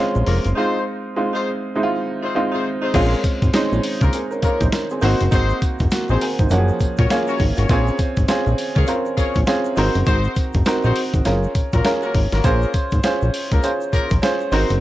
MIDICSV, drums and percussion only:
0, 0, Header, 1, 2, 480
1, 0, Start_track
1, 0, Key_signature, -5, "minor"
1, 0, Tempo, 594059
1, 457, Time_signature, 4, 2, 24, 8
1, 11962, End_track
2, 0, Start_track
2, 0, Title_t, "Drums"
2, 122, Note_on_c, 9, 82, 51
2, 203, Note_off_c, 9, 82, 0
2, 214, Note_on_c, 9, 46, 68
2, 224, Note_on_c, 9, 82, 48
2, 295, Note_off_c, 9, 46, 0
2, 305, Note_off_c, 9, 82, 0
2, 359, Note_on_c, 9, 42, 58
2, 368, Note_on_c, 9, 82, 51
2, 440, Note_off_c, 9, 42, 0
2, 449, Note_off_c, 9, 82, 0
2, 2375, Note_on_c, 9, 42, 73
2, 2376, Note_on_c, 9, 36, 124
2, 2376, Note_on_c, 9, 49, 94
2, 2376, Note_on_c, 9, 54, 66
2, 2384, Note_on_c, 9, 82, 70
2, 2456, Note_off_c, 9, 42, 0
2, 2457, Note_off_c, 9, 36, 0
2, 2457, Note_off_c, 9, 49, 0
2, 2457, Note_off_c, 9, 54, 0
2, 2465, Note_off_c, 9, 82, 0
2, 2532, Note_on_c, 9, 82, 59
2, 2612, Note_off_c, 9, 82, 0
2, 2618, Note_on_c, 9, 36, 90
2, 2618, Note_on_c, 9, 42, 76
2, 2620, Note_on_c, 9, 54, 65
2, 2621, Note_on_c, 9, 82, 55
2, 2699, Note_off_c, 9, 36, 0
2, 2699, Note_off_c, 9, 42, 0
2, 2701, Note_off_c, 9, 54, 0
2, 2701, Note_off_c, 9, 82, 0
2, 2765, Note_on_c, 9, 36, 99
2, 2765, Note_on_c, 9, 42, 48
2, 2769, Note_on_c, 9, 82, 47
2, 2846, Note_off_c, 9, 36, 0
2, 2846, Note_off_c, 9, 42, 0
2, 2850, Note_off_c, 9, 82, 0
2, 2856, Note_on_c, 9, 42, 79
2, 2857, Note_on_c, 9, 54, 88
2, 2859, Note_on_c, 9, 38, 115
2, 2862, Note_on_c, 9, 82, 71
2, 2937, Note_off_c, 9, 42, 0
2, 2938, Note_off_c, 9, 54, 0
2, 2940, Note_off_c, 9, 38, 0
2, 2942, Note_off_c, 9, 82, 0
2, 3007, Note_on_c, 9, 82, 48
2, 3088, Note_off_c, 9, 82, 0
2, 3097, Note_on_c, 9, 54, 68
2, 3099, Note_on_c, 9, 46, 81
2, 3178, Note_off_c, 9, 54, 0
2, 3179, Note_off_c, 9, 46, 0
2, 3239, Note_on_c, 9, 42, 57
2, 3243, Note_on_c, 9, 36, 96
2, 3246, Note_on_c, 9, 82, 60
2, 3320, Note_off_c, 9, 42, 0
2, 3323, Note_off_c, 9, 36, 0
2, 3326, Note_off_c, 9, 82, 0
2, 3334, Note_on_c, 9, 54, 69
2, 3336, Note_on_c, 9, 42, 79
2, 3341, Note_on_c, 9, 82, 72
2, 3415, Note_off_c, 9, 54, 0
2, 3417, Note_off_c, 9, 42, 0
2, 3422, Note_off_c, 9, 82, 0
2, 3485, Note_on_c, 9, 82, 52
2, 3566, Note_off_c, 9, 82, 0
2, 3574, Note_on_c, 9, 42, 64
2, 3577, Note_on_c, 9, 54, 58
2, 3578, Note_on_c, 9, 36, 88
2, 3582, Note_on_c, 9, 82, 47
2, 3655, Note_off_c, 9, 42, 0
2, 3657, Note_off_c, 9, 54, 0
2, 3658, Note_off_c, 9, 36, 0
2, 3663, Note_off_c, 9, 82, 0
2, 3721, Note_on_c, 9, 42, 59
2, 3724, Note_on_c, 9, 36, 102
2, 3730, Note_on_c, 9, 82, 51
2, 3802, Note_off_c, 9, 42, 0
2, 3805, Note_off_c, 9, 36, 0
2, 3811, Note_off_c, 9, 82, 0
2, 3817, Note_on_c, 9, 38, 104
2, 3817, Note_on_c, 9, 42, 80
2, 3817, Note_on_c, 9, 54, 95
2, 3819, Note_on_c, 9, 82, 58
2, 3897, Note_off_c, 9, 42, 0
2, 3897, Note_off_c, 9, 54, 0
2, 3898, Note_off_c, 9, 38, 0
2, 3900, Note_off_c, 9, 82, 0
2, 3958, Note_on_c, 9, 82, 54
2, 4039, Note_off_c, 9, 82, 0
2, 4052, Note_on_c, 9, 82, 52
2, 4059, Note_on_c, 9, 46, 67
2, 4133, Note_off_c, 9, 82, 0
2, 4140, Note_off_c, 9, 46, 0
2, 4199, Note_on_c, 9, 82, 51
2, 4206, Note_on_c, 9, 42, 56
2, 4280, Note_off_c, 9, 82, 0
2, 4287, Note_off_c, 9, 42, 0
2, 4295, Note_on_c, 9, 82, 72
2, 4299, Note_on_c, 9, 36, 119
2, 4300, Note_on_c, 9, 42, 75
2, 4300, Note_on_c, 9, 54, 67
2, 4376, Note_off_c, 9, 82, 0
2, 4380, Note_off_c, 9, 36, 0
2, 4381, Note_off_c, 9, 42, 0
2, 4381, Note_off_c, 9, 54, 0
2, 4440, Note_on_c, 9, 82, 54
2, 4521, Note_off_c, 9, 82, 0
2, 4535, Note_on_c, 9, 82, 51
2, 4541, Note_on_c, 9, 36, 89
2, 4541, Note_on_c, 9, 42, 74
2, 4543, Note_on_c, 9, 54, 72
2, 4616, Note_off_c, 9, 82, 0
2, 4621, Note_off_c, 9, 36, 0
2, 4622, Note_off_c, 9, 42, 0
2, 4624, Note_off_c, 9, 54, 0
2, 4679, Note_on_c, 9, 82, 52
2, 4687, Note_on_c, 9, 42, 50
2, 4688, Note_on_c, 9, 36, 100
2, 4760, Note_off_c, 9, 82, 0
2, 4768, Note_off_c, 9, 42, 0
2, 4769, Note_off_c, 9, 36, 0
2, 4774, Note_on_c, 9, 82, 66
2, 4780, Note_on_c, 9, 42, 79
2, 4781, Note_on_c, 9, 54, 101
2, 4783, Note_on_c, 9, 38, 119
2, 4855, Note_off_c, 9, 82, 0
2, 4861, Note_off_c, 9, 42, 0
2, 4861, Note_off_c, 9, 54, 0
2, 4863, Note_off_c, 9, 38, 0
2, 4917, Note_on_c, 9, 82, 46
2, 4997, Note_off_c, 9, 82, 0
2, 5019, Note_on_c, 9, 54, 72
2, 5021, Note_on_c, 9, 46, 82
2, 5100, Note_off_c, 9, 54, 0
2, 5102, Note_off_c, 9, 46, 0
2, 5155, Note_on_c, 9, 82, 64
2, 5165, Note_on_c, 9, 36, 96
2, 5165, Note_on_c, 9, 42, 57
2, 5236, Note_off_c, 9, 82, 0
2, 5246, Note_off_c, 9, 36, 0
2, 5246, Note_off_c, 9, 42, 0
2, 5247, Note_on_c, 9, 82, 74
2, 5258, Note_on_c, 9, 54, 68
2, 5260, Note_on_c, 9, 42, 76
2, 5328, Note_off_c, 9, 82, 0
2, 5339, Note_off_c, 9, 54, 0
2, 5341, Note_off_c, 9, 42, 0
2, 5398, Note_on_c, 9, 82, 54
2, 5478, Note_off_c, 9, 82, 0
2, 5493, Note_on_c, 9, 82, 52
2, 5499, Note_on_c, 9, 36, 76
2, 5499, Note_on_c, 9, 42, 56
2, 5502, Note_on_c, 9, 54, 63
2, 5574, Note_off_c, 9, 82, 0
2, 5580, Note_off_c, 9, 36, 0
2, 5580, Note_off_c, 9, 42, 0
2, 5582, Note_off_c, 9, 54, 0
2, 5634, Note_on_c, 9, 82, 55
2, 5645, Note_on_c, 9, 36, 108
2, 5647, Note_on_c, 9, 42, 54
2, 5715, Note_off_c, 9, 82, 0
2, 5726, Note_off_c, 9, 36, 0
2, 5728, Note_off_c, 9, 42, 0
2, 5733, Note_on_c, 9, 82, 60
2, 5740, Note_on_c, 9, 38, 106
2, 5740, Note_on_c, 9, 42, 79
2, 5740, Note_on_c, 9, 54, 101
2, 5813, Note_off_c, 9, 82, 0
2, 5821, Note_off_c, 9, 38, 0
2, 5821, Note_off_c, 9, 42, 0
2, 5821, Note_off_c, 9, 54, 0
2, 5876, Note_on_c, 9, 82, 51
2, 5957, Note_off_c, 9, 82, 0
2, 5970, Note_on_c, 9, 82, 50
2, 5978, Note_on_c, 9, 36, 99
2, 5981, Note_on_c, 9, 46, 73
2, 6051, Note_off_c, 9, 82, 0
2, 6059, Note_off_c, 9, 36, 0
2, 6061, Note_off_c, 9, 46, 0
2, 6115, Note_on_c, 9, 82, 49
2, 6126, Note_on_c, 9, 42, 62
2, 6196, Note_off_c, 9, 82, 0
2, 6206, Note_off_c, 9, 42, 0
2, 6210, Note_on_c, 9, 82, 71
2, 6217, Note_on_c, 9, 36, 122
2, 6217, Note_on_c, 9, 42, 74
2, 6218, Note_on_c, 9, 54, 70
2, 6291, Note_off_c, 9, 82, 0
2, 6298, Note_off_c, 9, 36, 0
2, 6298, Note_off_c, 9, 42, 0
2, 6299, Note_off_c, 9, 54, 0
2, 6362, Note_on_c, 9, 82, 60
2, 6443, Note_off_c, 9, 82, 0
2, 6449, Note_on_c, 9, 82, 52
2, 6455, Note_on_c, 9, 42, 74
2, 6456, Note_on_c, 9, 36, 87
2, 6457, Note_on_c, 9, 54, 70
2, 6529, Note_off_c, 9, 82, 0
2, 6536, Note_off_c, 9, 42, 0
2, 6537, Note_off_c, 9, 36, 0
2, 6538, Note_off_c, 9, 54, 0
2, 6600, Note_on_c, 9, 42, 47
2, 6600, Note_on_c, 9, 82, 53
2, 6603, Note_on_c, 9, 36, 99
2, 6680, Note_off_c, 9, 42, 0
2, 6681, Note_off_c, 9, 82, 0
2, 6684, Note_off_c, 9, 36, 0
2, 6692, Note_on_c, 9, 82, 63
2, 6693, Note_on_c, 9, 42, 84
2, 6693, Note_on_c, 9, 54, 100
2, 6695, Note_on_c, 9, 38, 111
2, 6773, Note_off_c, 9, 42, 0
2, 6773, Note_off_c, 9, 82, 0
2, 6774, Note_off_c, 9, 54, 0
2, 6776, Note_off_c, 9, 38, 0
2, 6838, Note_on_c, 9, 82, 48
2, 6919, Note_off_c, 9, 82, 0
2, 6933, Note_on_c, 9, 54, 67
2, 6934, Note_on_c, 9, 46, 73
2, 7014, Note_off_c, 9, 54, 0
2, 7015, Note_off_c, 9, 46, 0
2, 7074, Note_on_c, 9, 82, 60
2, 7077, Note_on_c, 9, 42, 50
2, 7079, Note_on_c, 9, 36, 96
2, 7155, Note_off_c, 9, 82, 0
2, 7158, Note_off_c, 9, 42, 0
2, 7160, Note_off_c, 9, 36, 0
2, 7166, Note_on_c, 9, 82, 78
2, 7171, Note_on_c, 9, 54, 67
2, 7173, Note_on_c, 9, 42, 75
2, 7247, Note_off_c, 9, 82, 0
2, 7252, Note_off_c, 9, 54, 0
2, 7254, Note_off_c, 9, 42, 0
2, 7317, Note_on_c, 9, 82, 51
2, 7398, Note_off_c, 9, 82, 0
2, 7413, Note_on_c, 9, 42, 62
2, 7413, Note_on_c, 9, 82, 49
2, 7414, Note_on_c, 9, 36, 81
2, 7415, Note_on_c, 9, 54, 65
2, 7494, Note_off_c, 9, 42, 0
2, 7494, Note_off_c, 9, 82, 0
2, 7495, Note_off_c, 9, 36, 0
2, 7496, Note_off_c, 9, 54, 0
2, 7554, Note_on_c, 9, 82, 54
2, 7561, Note_on_c, 9, 36, 102
2, 7562, Note_on_c, 9, 42, 62
2, 7634, Note_off_c, 9, 82, 0
2, 7642, Note_off_c, 9, 36, 0
2, 7643, Note_off_c, 9, 42, 0
2, 7649, Note_on_c, 9, 82, 62
2, 7653, Note_on_c, 9, 42, 78
2, 7653, Note_on_c, 9, 54, 100
2, 7654, Note_on_c, 9, 38, 104
2, 7730, Note_off_c, 9, 82, 0
2, 7734, Note_off_c, 9, 42, 0
2, 7734, Note_off_c, 9, 54, 0
2, 7735, Note_off_c, 9, 38, 0
2, 7795, Note_on_c, 9, 82, 54
2, 7875, Note_off_c, 9, 82, 0
2, 7889, Note_on_c, 9, 82, 55
2, 7898, Note_on_c, 9, 46, 74
2, 7970, Note_off_c, 9, 82, 0
2, 7978, Note_off_c, 9, 46, 0
2, 8033, Note_on_c, 9, 82, 50
2, 8042, Note_on_c, 9, 42, 59
2, 8114, Note_off_c, 9, 82, 0
2, 8123, Note_off_c, 9, 42, 0
2, 8127, Note_on_c, 9, 82, 72
2, 8134, Note_on_c, 9, 36, 127
2, 8134, Note_on_c, 9, 42, 75
2, 8134, Note_on_c, 9, 54, 62
2, 8208, Note_off_c, 9, 82, 0
2, 8214, Note_off_c, 9, 36, 0
2, 8215, Note_off_c, 9, 42, 0
2, 8215, Note_off_c, 9, 54, 0
2, 8273, Note_on_c, 9, 82, 56
2, 8353, Note_off_c, 9, 82, 0
2, 8365, Note_on_c, 9, 82, 54
2, 8374, Note_on_c, 9, 42, 74
2, 8375, Note_on_c, 9, 36, 87
2, 8376, Note_on_c, 9, 54, 65
2, 8446, Note_off_c, 9, 82, 0
2, 8455, Note_off_c, 9, 42, 0
2, 8456, Note_off_c, 9, 36, 0
2, 8457, Note_off_c, 9, 54, 0
2, 8511, Note_on_c, 9, 82, 53
2, 8520, Note_on_c, 9, 42, 51
2, 8522, Note_on_c, 9, 36, 98
2, 8592, Note_off_c, 9, 82, 0
2, 8601, Note_off_c, 9, 42, 0
2, 8603, Note_off_c, 9, 36, 0
2, 8607, Note_on_c, 9, 82, 70
2, 8612, Note_on_c, 9, 42, 75
2, 8613, Note_on_c, 9, 54, 104
2, 8615, Note_on_c, 9, 38, 118
2, 8688, Note_off_c, 9, 82, 0
2, 8693, Note_off_c, 9, 42, 0
2, 8694, Note_off_c, 9, 54, 0
2, 8696, Note_off_c, 9, 38, 0
2, 8755, Note_on_c, 9, 82, 47
2, 8835, Note_off_c, 9, 82, 0
2, 8851, Note_on_c, 9, 54, 65
2, 8853, Note_on_c, 9, 46, 85
2, 8932, Note_off_c, 9, 54, 0
2, 8933, Note_off_c, 9, 46, 0
2, 8998, Note_on_c, 9, 42, 52
2, 8999, Note_on_c, 9, 36, 100
2, 8999, Note_on_c, 9, 82, 59
2, 9079, Note_off_c, 9, 36, 0
2, 9079, Note_off_c, 9, 42, 0
2, 9079, Note_off_c, 9, 82, 0
2, 9091, Note_on_c, 9, 54, 70
2, 9091, Note_on_c, 9, 82, 75
2, 9092, Note_on_c, 9, 42, 76
2, 9093, Note_on_c, 9, 38, 65
2, 9171, Note_off_c, 9, 54, 0
2, 9172, Note_off_c, 9, 82, 0
2, 9173, Note_off_c, 9, 42, 0
2, 9174, Note_off_c, 9, 38, 0
2, 9237, Note_on_c, 9, 82, 52
2, 9318, Note_off_c, 9, 82, 0
2, 9332, Note_on_c, 9, 42, 65
2, 9334, Note_on_c, 9, 36, 87
2, 9334, Note_on_c, 9, 54, 62
2, 9335, Note_on_c, 9, 82, 50
2, 9413, Note_off_c, 9, 42, 0
2, 9414, Note_off_c, 9, 36, 0
2, 9415, Note_off_c, 9, 54, 0
2, 9415, Note_off_c, 9, 82, 0
2, 9475, Note_on_c, 9, 82, 55
2, 9479, Note_on_c, 9, 42, 61
2, 9480, Note_on_c, 9, 36, 107
2, 9556, Note_off_c, 9, 82, 0
2, 9560, Note_off_c, 9, 42, 0
2, 9561, Note_off_c, 9, 36, 0
2, 9569, Note_on_c, 9, 82, 60
2, 9571, Note_on_c, 9, 42, 82
2, 9571, Note_on_c, 9, 54, 97
2, 9572, Note_on_c, 9, 38, 111
2, 9650, Note_off_c, 9, 82, 0
2, 9652, Note_off_c, 9, 42, 0
2, 9652, Note_off_c, 9, 54, 0
2, 9653, Note_off_c, 9, 38, 0
2, 9714, Note_on_c, 9, 82, 49
2, 9795, Note_off_c, 9, 82, 0
2, 9812, Note_on_c, 9, 82, 53
2, 9814, Note_on_c, 9, 36, 96
2, 9815, Note_on_c, 9, 46, 78
2, 9893, Note_off_c, 9, 82, 0
2, 9894, Note_off_c, 9, 36, 0
2, 9895, Note_off_c, 9, 46, 0
2, 9954, Note_on_c, 9, 82, 49
2, 9958, Note_on_c, 9, 38, 69
2, 9961, Note_on_c, 9, 42, 55
2, 10035, Note_off_c, 9, 82, 0
2, 10039, Note_off_c, 9, 38, 0
2, 10041, Note_off_c, 9, 42, 0
2, 10050, Note_on_c, 9, 82, 72
2, 10051, Note_on_c, 9, 42, 71
2, 10052, Note_on_c, 9, 54, 65
2, 10054, Note_on_c, 9, 36, 127
2, 10131, Note_off_c, 9, 82, 0
2, 10132, Note_off_c, 9, 42, 0
2, 10133, Note_off_c, 9, 54, 0
2, 10134, Note_off_c, 9, 36, 0
2, 10199, Note_on_c, 9, 82, 61
2, 10279, Note_off_c, 9, 82, 0
2, 10291, Note_on_c, 9, 82, 55
2, 10293, Note_on_c, 9, 42, 69
2, 10295, Note_on_c, 9, 36, 87
2, 10295, Note_on_c, 9, 54, 63
2, 10371, Note_off_c, 9, 82, 0
2, 10374, Note_off_c, 9, 42, 0
2, 10376, Note_off_c, 9, 36, 0
2, 10376, Note_off_c, 9, 54, 0
2, 10434, Note_on_c, 9, 82, 51
2, 10440, Note_on_c, 9, 42, 51
2, 10442, Note_on_c, 9, 36, 105
2, 10515, Note_off_c, 9, 82, 0
2, 10520, Note_off_c, 9, 42, 0
2, 10523, Note_off_c, 9, 36, 0
2, 10530, Note_on_c, 9, 82, 65
2, 10532, Note_on_c, 9, 42, 76
2, 10533, Note_on_c, 9, 54, 104
2, 10535, Note_on_c, 9, 38, 108
2, 10611, Note_off_c, 9, 82, 0
2, 10613, Note_off_c, 9, 42, 0
2, 10614, Note_off_c, 9, 54, 0
2, 10616, Note_off_c, 9, 38, 0
2, 10680, Note_on_c, 9, 82, 46
2, 10760, Note_off_c, 9, 82, 0
2, 10776, Note_on_c, 9, 54, 64
2, 10778, Note_on_c, 9, 46, 84
2, 10857, Note_off_c, 9, 54, 0
2, 10858, Note_off_c, 9, 46, 0
2, 10918, Note_on_c, 9, 82, 62
2, 10921, Note_on_c, 9, 36, 96
2, 10922, Note_on_c, 9, 42, 54
2, 10998, Note_off_c, 9, 82, 0
2, 11002, Note_off_c, 9, 36, 0
2, 11003, Note_off_c, 9, 42, 0
2, 11013, Note_on_c, 9, 82, 74
2, 11017, Note_on_c, 9, 54, 66
2, 11019, Note_on_c, 9, 42, 80
2, 11094, Note_off_c, 9, 82, 0
2, 11098, Note_off_c, 9, 54, 0
2, 11100, Note_off_c, 9, 42, 0
2, 11159, Note_on_c, 9, 82, 57
2, 11239, Note_off_c, 9, 82, 0
2, 11253, Note_on_c, 9, 82, 54
2, 11256, Note_on_c, 9, 36, 80
2, 11259, Note_on_c, 9, 42, 63
2, 11261, Note_on_c, 9, 54, 64
2, 11334, Note_off_c, 9, 82, 0
2, 11337, Note_off_c, 9, 36, 0
2, 11339, Note_off_c, 9, 42, 0
2, 11342, Note_off_c, 9, 54, 0
2, 11395, Note_on_c, 9, 82, 55
2, 11402, Note_on_c, 9, 36, 108
2, 11403, Note_on_c, 9, 42, 60
2, 11475, Note_off_c, 9, 82, 0
2, 11483, Note_off_c, 9, 36, 0
2, 11483, Note_off_c, 9, 42, 0
2, 11492, Note_on_c, 9, 82, 63
2, 11498, Note_on_c, 9, 38, 109
2, 11498, Note_on_c, 9, 42, 80
2, 11498, Note_on_c, 9, 54, 97
2, 11573, Note_off_c, 9, 82, 0
2, 11578, Note_off_c, 9, 42, 0
2, 11578, Note_off_c, 9, 54, 0
2, 11579, Note_off_c, 9, 38, 0
2, 11636, Note_on_c, 9, 82, 52
2, 11717, Note_off_c, 9, 82, 0
2, 11732, Note_on_c, 9, 82, 54
2, 11736, Note_on_c, 9, 46, 71
2, 11812, Note_off_c, 9, 82, 0
2, 11817, Note_off_c, 9, 46, 0
2, 11876, Note_on_c, 9, 82, 49
2, 11880, Note_on_c, 9, 42, 64
2, 11957, Note_off_c, 9, 82, 0
2, 11961, Note_off_c, 9, 42, 0
2, 11962, End_track
0, 0, End_of_file